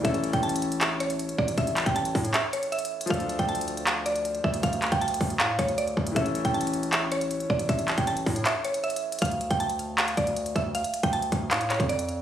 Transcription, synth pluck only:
X:1
M:4/4
L:1/16
Q:1/4=157
K:Dm
V:1 name="Synth pluck"
e3 g a4 e2 ^c4 d2 | e3 g a4 e2 ^c2 e4 | f3 g a4 f2 d4 e2 | f3 g a4 f2 ^c2 d4 |
e3 g a4 e2 ^c4 d2 | e3 g a4 e2 ^c2 e4 | f3 g a4 f2 d4 e2 | f3 g a4 f2 ^c2 d4 |]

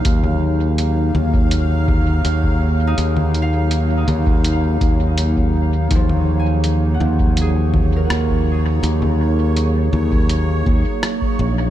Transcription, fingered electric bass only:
X:1
M:4/4
L:1/8
Q:1/4=82
K:Ebm
V:1 name="Fingered electric bass" clef=bass
E,,3 E,,3 E,,2 | E,,3 E,,2 E,,3 | E,,3 E,,3 E,,2 | E,,3 E,,2 E,, z B,,, |]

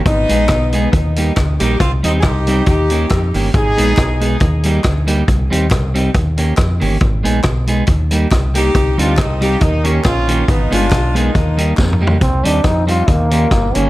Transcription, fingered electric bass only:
X:1
M:4/4
L:1/8
Q:"Swing" 1/4=138
K:Eb
V:1 name="Fingered electric bass" clef=bass
A,,, B,,, _C,,2 E,,2 D,, B,,, | C,, E,, C,,2 E,,2 F,, G,,, | A,,, B,,, _C,,2 E,,2 D,,2 | C,, E,, C,,2 E,,2 F,, G,,, |
A,,, B,,, _C,,2 E,,2 =C,,2 | C,, D,, C,,2 E,,2 B,,,2 | A,,, G,,, _C,,2 E,,2 F,,2 | C,, E,, F,,2 E,,2 G,,, G,,, |]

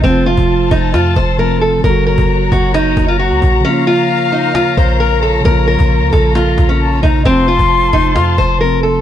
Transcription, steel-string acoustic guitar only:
X:1
M:4/4
L:1/16
Q:1/4=133
K:Bbm
V:1 name="Steel-string acoustic guitar"
C2 F4 E2 F2 c2 B2 =A2 | B2 B4 G2 E3 F G4 | D2 F4 E2 F2 c2 B2 =A2 | B2 B4 =A2 F3 D3 E2 |
C2 F4 E2 F2 c2 B2 =A2 |]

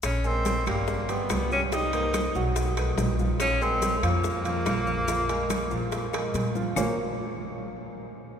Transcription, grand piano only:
X:1
M:4/4
L:1/8
Q:1/4=143
K:Bbm
V:1 name="Grand piano"
z [A,AB]2 [=G,=G=g]2 [G,Gg]2 [G,Gg] | [=G,=G=g] [B,Bc]2 [_G,_G_g]2 [=A,=A=B]2 [F,Ff]- | [F,Ff] [A,AB]2 [F,Ff]2 [F,Ff]2 [F,Ff] | [F,Ff] [A,AB]2 [F,Ff]2 [A,AB]2 [F,Ff] |
[B,FABcd] z6 z |]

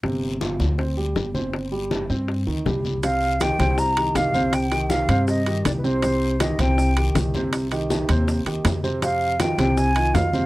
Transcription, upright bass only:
X:1
M:4/4
L:1/8
Q:1/4=160
K:Cm
V:1 name="Upright bass" clef=bass
G,,,3 D,,3 G,,,2- | G,,,3 G,,2 D,, C,,2- | C,,3 C,,3 C,,2- | C,,3 G,,3 C,,2- |
C,,3 C,,3 C,,2- | C,,3 E,,2 E,, F,,2- | F,,3 C,,3 F,,2 |]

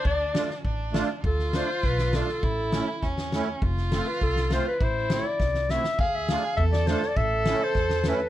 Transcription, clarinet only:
X:1
M:2/4
L:1/16
Q:1/4=101
K:none
V:1 name="Clarinet"
d4 z4 | A2 c2 B2 A2- | A4 z4 | z2 A B A2 c B |
c2 d4 e2 | f e f2 e d c d | e3 c3 B2 |]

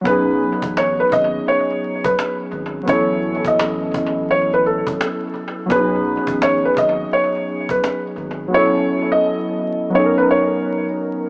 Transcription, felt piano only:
X:1
M:4/4
L:1/16
Q:"Swing 16ths" 1/4=85
K:Bmix
V:1 name="Felt piano"
B4 c B d2 c3 B2 z3 | c3 d4- d c B A6 | B4 c B d2 c3 B2 z3 | c3 d4- d c B c3 z3 |]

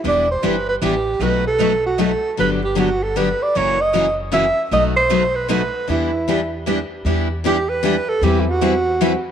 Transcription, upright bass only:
X:1
M:3/4
L:1/8
Q:"Swing" 1/4=154
K:Em
V:1 name="Upright bass" clef=bass
E,,,2 G,,,2 A,,,2 | B,,,6 | G,,,6 | F,,,6 |
B,,,6 | E,,6 | E,,6 | E,,6 |]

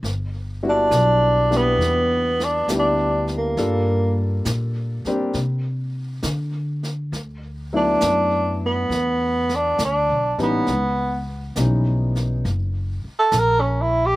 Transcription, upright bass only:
X:1
M:4/4
L:1/8
Q:"Swing" 1/4=68
K:D
V:1 name="Upright bass" clef=bass
G,,,2 B,,,2 E,,2 D,,2 | G,,2 _B,, z =C,2 D,2 | D,,2 F,,2 E,,2 (3D,, B,,, A,,, | C,,2 B,,,2 F,,, z ^A,,,2 |]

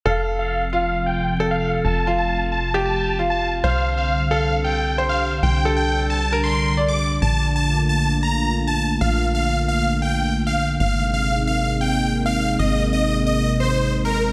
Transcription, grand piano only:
X:1
M:4/4
L:1/8
Q:1/4=134
K:F
V:1 name="Grand piano"
A3 F3 A2- | A F3 G2 F2 | c3 A3 c2- | c A3 B2 d2 |
z8 | z8 | z8 | z8 |]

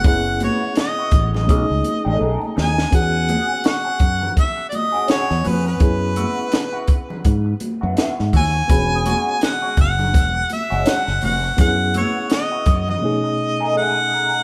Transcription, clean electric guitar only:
X:1
M:4/4
L:1/16
Q:"Swing 16ths" 1/4=83
K:E
V:1 name="Clean electric guitar"
z2 [B,EF] z2 [B,EF] z4 z [A,DG] [A,DG] z [A,DG] z | z2 [CFG] z2 [CFG] z4 z [CFG] [CFG] z [CFG] z | z2 [B,EF] z2 [B,EF] z4 z [B,EF] [B,EF] z [B,EF] z | z2 [G,CF] z2 [G,CF] z4 z [G,CF] [G,CF] z [G,CF] z |
z2 [B,EF] z2 [B,EF] z4 z [A,DG] [A,DG] z [A,DG] z |]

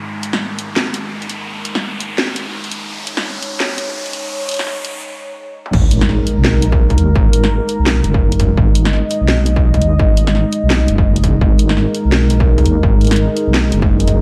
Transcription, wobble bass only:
X:1
M:4/4
L:1/16
Q:"Swing 16ths" 1/4=169
K:G#m
V:1 name="Wobble bass" clef=bass
z16 | z16 | z16 | z16 |
G,,,4- G,,, z2 B,,,6- B,,, D,,2 | G,,,4- G,,, z2 B,,,3 F,,,6 | G,,,4- G,,, z2 B,,,6- B,,, D,,2 | G,,,4- G,,, z2 B,,,3 F,,,6 |
G,,,4- G,,, z2 B,,,6- B,,, D,,2 | G,,,4- G,,, z2 B,,,3 F,,,6 |]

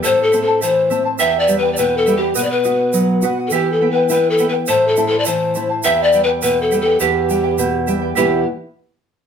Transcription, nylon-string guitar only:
X:1
M:2/4
L:1/8
Q:1/4=103
K:Em
V:1 name="Nylon-string guitar" clef=bass
A,, C E, C | E,, G, B,, G, | B,, F F, F | E, B, E B, |
A,, E E, E | E,, G, B,, G, | E,, G, B,, G, | [E,,B,,E,G,B,E] z3 |]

